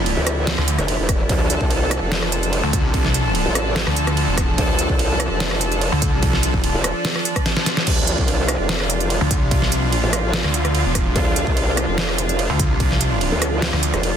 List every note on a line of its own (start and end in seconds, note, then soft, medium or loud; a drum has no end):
0.00 0.15 C2 loud
0.00 14.17 F3 medium
0.00 14.17 D4 medium
0.00 1.28 E4 medium
0.06 ride soft
0.17 0.56 D2 loud
0.27 cross-stick medium
0.27 closed hi-hat medium
0.47 snare loud
0.47 ride medium
0.58 0.77 D2 medium
0.58 cross-stick medium
0.68 closed hi-hat medium
0.79 0.97 F1 loud
0.79 cross-stick medium
0.79 closed hi-hat soft
0.88 ride soft
0.99 1.28 E1 loud
1.09 kick loud
1.09 cross-stick medium
1.09 closed hi-hat medium
1.29 1.59 D2 medium
1.29 7.85 A4 medium
1.29 kick loud
1.29 ride medium
1.50 closed hi-hat medium
1.61 2.00 C2 medium
1.61 kick medium
1.71 ride soft
1.91 cross-stick medium
1.91 closed hi-hat medium
2.02 2.62 F1 medium
2.12 snare loud
2.12 ride medium
2.22 cross-stick medium
2.32 closed hi-hat medium
2.43 closed hi-hat soft
2.53 ride soft
2.63 2.82 D2 loud
2.73 kick loud
2.73 closed hi-hat medium
2.84 3.44 C2 loud
2.94 kick loud
2.94 ride medium
3.05 snare soft
3.14 closed hi-hat medium
3.35 ride soft
3.46 3.85 A1 loud
3.55 cross-stick medium
3.55 closed hi-hat medium
3.76 snare loud
3.76 ride medium
3.87 4.26 D2 medium
3.87 cross-stick medium
3.96 closed hi-hat medium
4.07 cross-stick medium
4.07 closed hi-hat soft
4.17 ride soft
4.28 4.57 E1 loud
4.38 kick loud
4.38 cross-stick medium
4.38 closed hi-hat medium
4.58 4.88 D2 loud
4.58 kick loud
4.58 ride medium
4.79 closed hi-hat medium
4.89 5.29 C2 loud
4.89 kick medium
4.99 ride soft
5.20 cross-stick medium
5.20 closed hi-hat medium
5.31 5.91 F1 loud
5.40 snare loud
5.40 ride medium
5.51 cross-stick medium
5.61 closed hi-hat medium
5.72 closed hi-hat soft
5.81 ride medium
5.92 6.11 D2 loud
6.02 kick loud
6.02 closed hi-hat medium
6.13 6.73 C2 loud
6.23 kick loud
6.23 ride medium
6.33 snare soft
6.43 closed hi-hat medium
6.54 kick medium
6.64 ride soft
6.74 6.93 E1 loud
6.84 cross-stick medium
6.84 closed hi-hat medium
7.05 snare loud
7.05 ride medium
7.16 cross-stick medium
7.25 closed hi-hat medium
7.36 kick medium
7.36 cross-stick medium
7.36 closed hi-hat soft
7.46 snare medium
7.46 ride soft
7.57 snare medium
7.66 snare medium
7.66 closed hi-hat medium
7.77 snare medium
7.87 8.17 D2 loud
7.87 14.17 F4 loud
7.87 kick loud
7.87 ride medium
7.87 crash medium
8.07 closed hi-hat medium
8.18 8.58 C2 loud
8.18 kick medium
8.28 ride soft
8.48 cross-stick medium
8.48 closed hi-hat medium
8.59 9.19 F1 loud
8.69 snare loud
8.69 ride medium
8.80 cross-stick medium
8.90 closed hi-hat medium
9.00 closed hi-hat soft
9.10 ride soft
9.21 9.40 D2 loud
9.31 kick loud
9.31 closed hi-hat medium
9.42 9.84 C2 loud
9.51 kick loud
9.51 ride medium
9.62 snare soft
9.72 closed hi-hat medium
9.84 10.02 B1 loud
9.92 ride soft
10.03 10.43 A1 loud
10.13 cross-stick medium
10.13 closed hi-hat medium
10.34 snare loud
10.34 ride medium
10.44 10.84 D2 loud
10.44 cross-stick medium
10.54 closed hi-hat medium
10.65 cross-stick medium
10.65 closed hi-hat soft
10.75 ride soft
10.85 11.14 E1 loud
10.95 kick loud
10.95 cross-stick medium
10.95 closed hi-hat medium
11.16 11.45 D2 loud
11.16 kick loud
11.16 ride medium
11.36 closed hi-hat medium
11.47 11.86 C2 loud
11.47 kick medium
11.57 ride soft
11.77 cross-stick medium
11.77 closed hi-hat medium
11.88 12.48 F1 loud
11.98 snare loud
11.98 ride medium
12.09 cross-stick medium
12.18 closed hi-hat medium
12.29 closed hi-hat soft
12.39 ride soft
12.50 12.69 D2 loud
12.60 kick loud
12.60 closed hi-hat medium
12.70 13.30 C2 loud
12.80 kick loud
12.80 ride medium
12.91 snare soft
13.01 closed hi-hat medium
13.21 ride soft
13.32 13.71 D2 loud
13.42 cross-stick medium
13.42 closed hi-hat medium
13.62 snare loud
13.62 ride medium
13.73 13.92 D2 loud
13.73 cross-stick medium
13.83 closed hi-hat medium
13.94 14.12 F1 loud
13.94 cross-stick medium
13.94 closed hi-hat soft
14.03 ride soft